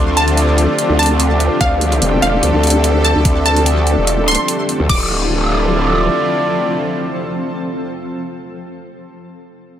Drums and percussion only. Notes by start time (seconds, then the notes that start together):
0.17 closed hi-hat
0.28 closed hi-hat
0.37 closed hi-hat
0.58 closed hi-hat
0.79 closed hi-hat
0.99 closed hi-hat
1.03 closed hi-hat
1.06 closed hi-hat
1.20 closed hi-hat
1.40 closed hi-hat
1.61 kick, closed hi-hat
1.81 closed hi-hat
1.92 closed hi-hat
2.02 closed hi-hat
2.22 closed hi-hat
2.43 closed hi-hat
2.63 closed hi-hat
2.67 closed hi-hat
2.70 closed hi-hat
2.84 closed hi-hat
3.05 closed hi-hat
3.25 kick, closed hi-hat
3.46 closed hi-hat
3.56 closed hi-hat
3.66 closed hi-hat
3.87 closed hi-hat
4.07 closed hi-hat
4.28 closed hi-hat
4.31 closed hi-hat
4.35 closed hi-hat
4.48 closed hi-hat
4.69 closed hi-hat
4.89 kick, crash